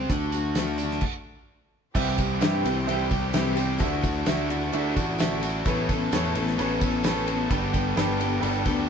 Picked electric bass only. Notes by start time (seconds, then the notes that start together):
0.10 D2
1.95 C2
2.41 G2
2.65 C2
2.88 C2
3.80 D2
4.28 D2
4.74 D2
4.97 A1
5.66 A1
6.13 E2
6.36 A1
6.59 A1
7.50 G1
7.96 G1
8.42 G1
8.66 D2